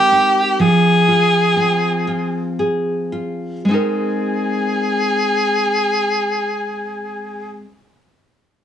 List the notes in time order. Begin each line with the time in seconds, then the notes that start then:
Already playing: G#3 C4 D#4 G4 A#4
0.12 D#4
0.60 F3 G#4
1.08 F4
1.56 C4
2.07 F4
2.59 G#4
3.12 F4
3.65 G#3 C4
3.69 D#4 G#4
3.74 A#4